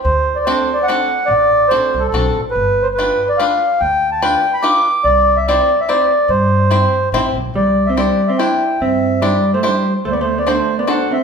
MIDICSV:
0, 0, Header, 1, 5, 480
1, 0, Start_track
1, 0, Key_signature, 0, "major"
1, 0, Tempo, 416667
1, 67, Time_signature, 3, 2, 24, 8
1, 12943, End_track
2, 0, Start_track
2, 0, Title_t, "Accordion"
2, 0, Program_c, 0, 21
2, 44, Note_on_c, 0, 72, 97
2, 413, Note_on_c, 0, 74, 74
2, 436, Note_off_c, 0, 72, 0
2, 511, Note_on_c, 0, 72, 81
2, 524, Note_off_c, 0, 74, 0
2, 847, Note_on_c, 0, 74, 78
2, 906, Note_off_c, 0, 72, 0
2, 957, Note_on_c, 0, 78, 95
2, 991, Note_off_c, 0, 74, 0
2, 1449, Note_on_c, 0, 74, 107
2, 1481, Note_off_c, 0, 78, 0
2, 1939, Note_on_c, 0, 72, 85
2, 1969, Note_off_c, 0, 74, 0
2, 2299, Note_on_c, 0, 69, 76
2, 2343, Note_off_c, 0, 72, 0
2, 2384, Note_off_c, 0, 69, 0
2, 2401, Note_on_c, 0, 69, 79
2, 2776, Note_off_c, 0, 69, 0
2, 2886, Note_on_c, 0, 71, 88
2, 3254, Note_on_c, 0, 72, 78
2, 3298, Note_off_c, 0, 71, 0
2, 3316, Note_off_c, 0, 72, 0
2, 3391, Note_on_c, 0, 71, 82
2, 3790, Note_off_c, 0, 71, 0
2, 3790, Note_on_c, 0, 74, 77
2, 3888, Note_on_c, 0, 77, 82
2, 3904, Note_off_c, 0, 74, 0
2, 4380, Note_on_c, 0, 79, 96
2, 4390, Note_off_c, 0, 77, 0
2, 4726, Note_off_c, 0, 79, 0
2, 4742, Note_on_c, 0, 81, 76
2, 4858, Note_on_c, 0, 79, 96
2, 4859, Note_off_c, 0, 81, 0
2, 5227, Note_on_c, 0, 83, 82
2, 5240, Note_off_c, 0, 79, 0
2, 5329, Note_on_c, 0, 86, 108
2, 5340, Note_off_c, 0, 83, 0
2, 5812, Note_on_c, 0, 74, 103
2, 5825, Note_off_c, 0, 86, 0
2, 6186, Note_on_c, 0, 76, 83
2, 6194, Note_off_c, 0, 74, 0
2, 6297, Note_off_c, 0, 76, 0
2, 6314, Note_on_c, 0, 74, 96
2, 6683, Note_off_c, 0, 74, 0
2, 6688, Note_on_c, 0, 76, 86
2, 6776, Note_on_c, 0, 74, 93
2, 6786, Note_off_c, 0, 76, 0
2, 7255, Note_on_c, 0, 72, 91
2, 7266, Note_off_c, 0, 74, 0
2, 8170, Note_off_c, 0, 72, 0
2, 8708, Note_on_c, 0, 74, 80
2, 9061, Note_on_c, 0, 76, 67
2, 9090, Note_off_c, 0, 74, 0
2, 9181, Note_off_c, 0, 76, 0
2, 9196, Note_on_c, 0, 74, 77
2, 9534, Note_on_c, 0, 76, 68
2, 9572, Note_off_c, 0, 74, 0
2, 9654, Note_on_c, 0, 79, 70
2, 9657, Note_off_c, 0, 76, 0
2, 10151, Note_off_c, 0, 79, 0
2, 10152, Note_on_c, 0, 76, 75
2, 10614, Note_on_c, 0, 74, 78
2, 10639, Note_off_c, 0, 76, 0
2, 10960, Note_off_c, 0, 74, 0
2, 10989, Note_on_c, 0, 72, 74
2, 11078, Note_off_c, 0, 72, 0
2, 11096, Note_on_c, 0, 72, 73
2, 11442, Note_off_c, 0, 72, 0
2, 11594, Note_on_c, 0, 72, 82
2, 11654, Note_on_c, 0, 74, 71
2, 11676, Note_off_c, 0, 72, 0
2, 11747, Note_off_c, 0, 74, 0
2, 11761, Note_on_c, 0, 72, 74
2, 11960, Note_off_c, 0, 72, 0
2, 11964, Note_on_c, 0, 74, 76
2, 12062, Note_on_c, 0, 72, 83
2, 12069, Note_off_c, 0, 74, 0
2, 12407, Note_off_c, 0, 72, 0
2, 12427, Note_on_c, 0, 74, 64
2, 12542, Note_off_c, 0, 74, 0
2, 12551, Note_on_c, 0, 78, 74
2, 12812, Note_on_c, 0, 76, 78
2, 12817, Note_off_c, 0, 78, 0
2, 12943, Note_off_c, 0, 76, 0
2, 12943, End_track
3, 0, Start_track
3, 0, Title_t, "Five-string banjo"
3, 0, Program_c, 1, 105
3, 540, Note_on_c, 1, 62, 61
3, 540, Note_on_c, 1, 66, 56
3, 544, Note_on_c, 1, 60, 63
3, 549, Note_on_c, 1, 69, 67
3, 800, Note_off_c, 1, 62, 0
3, 802, Note_off_c, 1, 66, 0
3, 804, Note_off_c, 1, 60, 0
3, 806, Note_off_c, 1, 69, 0
3, 1018, Note_on_c, 1, 66, 54
3, 1027, Note_on_c, 1, 60, 53
3, 1027, Note_on_c, 1, 62, 52
3, 1033, Note_on_c, 1, 69, 67
3, 1280, Note_off_c, 1, 66, 0
3, 1281, Note_off_c, 1, 62, 0
3, 1283, Note_off_c, 1, 60, 0
3, 1286, Note_off_c, 1, 69, 0
3, 1970, Note_on_c, 1, 60, 58
3, 1975, Note_on_c, 1, 69, 66
3, 1976, Note_on_c, 1, 66, 51
3, 1978, Note_on_c, 1, 62, 49
3, 2237, Note_off_c, 1, 62, 0
3, 2238, Note_off_c, 1, 60, 0
3, 2239, Note_off_c, 1, 66, 0
3, 2239, Note_off_c, 1, 69, 0
3, 2463, Note_on_c, 1, 60, 56
3, 2464, Note_on_c, 1, 66, 49
3, 2470, Note_on_c, 1, 69, 62
3, 2473, Note_on_c, 1, 62, 50
3, 2726, Note_off_c, 1, 66, 0
3, 2727, Note_off_c, 1, 60, 0
3, 2727, Note_off_c, 1, 62, 0
3, 2727, Note_off_c, 1, 69, 0
3, 3439, Note_on_c, 1, 65, 54
3, 3441, Note_on_c, 1, 62, 51
3, 3448, Note_on_c, 1, 67, 47
3, 3452, Note_on_c, 1, 71, 56
3, 3693, Note_off_c, 1, 62, 0
3, 3694, Note_off_c, 1, 65, 0
3, 3697, Note_off_c, 1, 71, 0
3, 3698, Note_off_c, 1, 67, 0
3, 3911, Note_on_c, 1, 67, 45
3, 3913, Note_on_c, 1, 62, 56
3, 3919, Note_on_c, 1, 65, 53
3, 3924, Note_on_c, 1, 71, 58
3, 4168, Note_off_c, 1, 62, 0
3, 4169, Note_off_c, 1, 67, 0
3, 4173, Note_off_c, 1, 65, 0
3, 4176, Note_off_c, 1, 71, 0
3, 4865, Note_on_c, 1, 65, 57
3, 4866, Note_on_c, 1, 71, 65
3, 4867, Note_on_c, 1, 62, 63
3, 4875, Note_on_c, 1, 67, 52
3, 5124, Note_off_c, 1, 62, 0
3, 5124, Note_off_c, 1, 71, 0
3, 5125, Note_off_c, 1, 65, 0
3, 5129, Note_off_c, 1, 67, 0
3, 5329, Note_on_c, 1, 62, 58
3, 5339, Note_on_c, 1, 67, 52
3, 5342, Note_on_c, 1, 71, 64
3, 5345, Note_on_c, 1, 65, 58
3, 5594, Note_off_c, 1, 62, 0
3, 5600, Note_off_c, 1, 67, 0
3, 5600, Note_off_c, 1, 71, 0
3, 5603, Note_off_c, 1, 65, 0
3, 6317, Note_on_c, 1, 67, 57
3, 6320, Note_on_c, 1, 60, 66
3, 6320, Note_on_c, 1, 64, 57
3, 6330, Note_on_c, 1, 72, 65
3, 6565, Note_off_c, 1, 64, 0
3, 6567, Note_off_c, 1, 60, 0
3, 6567, Note_off_c, 1, 67, 0
3, 6567, Note_off_c, 1, 72, 0
3, 6782, Note_on_c, 1, 67, 55
3, 6786, Note_on_c, 1, 60, 55
3, 6789, Note_on_c, 1, 64, 50
3, 6792, Note_on_c, 1, 72, 60
3, 7038, Note_off_c, 1, 67, 0
3, 7038, Note_off_c, 1, 72, 0
3, 7039, Note_off_c, 1, 60, 0
3, 7039, Note_off_c, 1, 64, 0
3, 7724, Note_on_c, 1, 64, 53
3, 7731, Note_on_c, 1, 60, 49
3, 7735, Note_on_c, 1, 72, 65
3, 7736, Note_on_c, 1, 67, 48
3, 7990, Note_off_c, 1, 64, 0
3, 7993, Note_off_c, 1, 60, 0
3, 7995, Note_off_c, 1, 72, 0
3, 7996, Note_off_c, 1, 67, 0
3, 8223, Note_on_c, 1, 67, 54
3, 8226, Note_on_c, 1, 60, 64
3, 8228, Note_on_c, 1, 64, 60
3, 8228, Note_on_c, 1, 72, 74
3, 8484, Note_off_c, 1, 72, 0
3, 8485, Note_off_c, 1, 60, 0
3, 8485, Note_off_c, 1, 67, 0
3, 8487, Note_off_c, 1, 64, 0
3, 9183, Note_on_c, 1, 64, 50
3, 9187, Note_on_c, 1, 67, 49
3, 9188, Note_on_c, 1, 72, 58
3, 9190, Note_on_c, 1, 62, 49
3, 9445, Note_off_c, 1, 62, 0
3, 9447, Note_off_c, 1, 64, 0
3, 9447, Note_off_c, 1, 72, 0
3, 9448, Note_off_c, 1, 67, 0
3, 9669, Note_on_c, 1, 64, 50
3, 9671, Note_on_c, 1, 67, 48
3, 9671, Note_on_c, 1, 72, 59
3, 9673, Note_on_c, 1, 62, 55
3, 9927, Note_off_c, 1, 62, 0
3, 9927, Note_off_c, 1, 64, 0
3, 9927, Note_off_c, 1, 72, 0
3, 9929, Note_off_c, 1, 67, 0
3, 10624, Note_on_c, 1, 67, 56
3, 10625, Note_on_c, 1, 64, 54
3, 10627, Note_on_c, 1, 62, 61
3, 10629, Note_on_c, 1, 72, 57
3, 10883, Note_off_c, 1, 62, 0
3, 10883, Note_off_c, 1, 64, 0
3, 10884, Note_off_c, 1, 67, 0
3, 10885, Note_off_c, 1, 72, 0
3, 11094, Note_on_c, 1, 67, 56
3, 11099, Note_on_c, 1, 64, 45
3, 11105, Note_on_c, 1, 72, 56
3, 11107, Note_on_c, 1, 62, 61
3, 11361, Note_off_c, 1, 62, 0
3, 11361, Note_off_c, 1, 64, 0
3, 11361, Note_off_c, 1, 67, 0
3, 11361, Note_off_c, 1, 72, 0
3, 12057, Note_on_c, 1, 62, 62
3, 12063, Note_on_c, 1, 66, 52
3, 12069, Note_on_c, 1, 69, 53
3, 12074, Note_on_c, 1, 72, 70
3, 12322, Note_off_c, 1, 62, 0
3, 12322, Note_off_c, 1, 66, 0
3, 12327, Note_off_c, 1, 69, 0
3, 12329, Note_off_c, 1, 72, 0
3, 12527, Note_on_c, 1, 62, 56
3, 12529, Note_on_c, 1, 66, 56
3, 12536, Note_on_c, 1, 69, 52
3, 12536, Note_on_c, 1, 72, 59
3, 12797, Note_off_c, 1, 66, 0
3, 12798, Note_off_c, 1, 62, 0
3, 12799, Note_off_c, 1, 69, 0
3, 12802, Note_off_c, 1, 72, 0
3, 12943, End_track
4, 0, Start_track
4, 0, Title_t, "Hollow-body jazz guitar"
4, 0, Program_c, 2, 26
4, 8703, Note_on_c, 2, 55, 55
4, 9050, Note_off_c, 2, 55, 0
4, 9095, Note_on_c, 2, 60, 48
4, 9187, Note_off_c, 2, 60, 0
4, 9193, Note_on_c, 2, 55, 62
4, 9534, Note_off_c, 2, 55, 0
4, 9555, Note_on_c, 2, 60, 53
4, 9656, Note_off_c, 2, 60, 0
4, 9672, Note_on_c, 2, 64, 57
4, 10112, Note_off_c, 2, 64, 0
4, 10158, Note_on_c, 2, 60, 66
4, 10595, Note_off_c, 2, 60, 0
4, 10619, Note_on_c, 2, 55, 64
4, 10963, Note_off_c, 2, 55, 0
4, 10991, Note_on_c, 2, 57, 64
4, 11092, Note_off_c, 2, 57, 0
4, 11099, Note_on_c, 2, 55, 57
4, 11444, Note_off_c, 2, 55, 0
4, 11581, Note_on_c, 2, 57, 68
4, 11661, Note_off_c, 2, 57, 0
4, 11673, Note_on_c, 2, 59, 63
4, 11750, Note_off_c, 2, 59, 0
4, 11762, Note_on_c, 2, 57, 76
4, 11942, Note_off_c, 2, 57, 0
4, 11959, Note_on_c, 2, 59, 56
4, 12056, Note_off_c, 2, 59, 0
4, 12061, Note_on_c, 2, 57, 58
4, 12406, Note_off_c, 2, 57, 0
4, 12430, Note_on_c, 2, 59, 65
4, 12533, Note_off_c, 2, 59, 0
4, 12557, Note_on_c, 2, 62, 53
4, 12794, Note_off_c, 2, 62, 0
4, 12805, Note_on_c, 2, 60, 58
4, 12943, Note_off_c, 2, 60, 0
4, 12943, End_track
5, 0, Start_track
5, 0, Title_t, "Upright bass"
5, 0, Program_c, 3, 32
5, 53, Note_on_c, 3, 38, 82
5, 676, Note_off_c, 3, 38, 0
5, 1476, Note_on_c, 3, 33, 75
5, 1966, Note_off_c, 3, 33, 0
5, 2234, Note_on_c, 3, 36, 66
5, 2435, Note_off_c, 3, 36, 0
5, 2446, Note_on_c, 3, 35, 84
5, 2690, Note_off_c, 3, 35, 0
5, 2714, Note_on_c, 3, 33, 60
5, 2915, Note_off_c, 3, 33, 0
5, 2940, Note_on_c, 3, 31, 68
5, 3565, Note_off_c, 3, 31, 0
5, 4387, Note_on_c, 3, 38, 73
5, 5007, Note_off_c, 3, 38, 0
5, 5806, Note_on_c, 3, 36, 74
5, 6430, Note_off_c, 3, 36, 0
5, 7238, Note_on_c, 3, 43, 81
5, 7868, Note_off_c, 3, 43, 0
5, 8204, Note_on_c, 3, 33, 73
5, 8447, Note_off_c, 3, 33, 0
5, 8471, Note_on_c, 3, 35, 68
5, 8673, Note_off_c, 3, 35, 0
5, 8683, Note_on_c, 3, 36, 63
5, 9315, Note_off_c, 3, 36, 0
5, 10145, Note_on_c, 3, 43, 61
5, 10766, Note_off_c, 3, 43, 0
5, 11577, Note_on_c, 3, 38, 68
5, 12203, Note_off_c, 3, 38, 0
5, 12943, End_track
0, 0, End_of_file